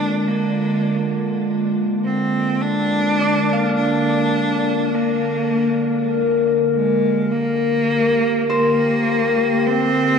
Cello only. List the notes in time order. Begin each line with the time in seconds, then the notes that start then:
Already playing: D4
0.28 A#3
2.04 C4
2.61 D4
3.76 D4
4.95 A#3
6.74 G#3
7.31 A#3
8.49 A#3
9.67 C4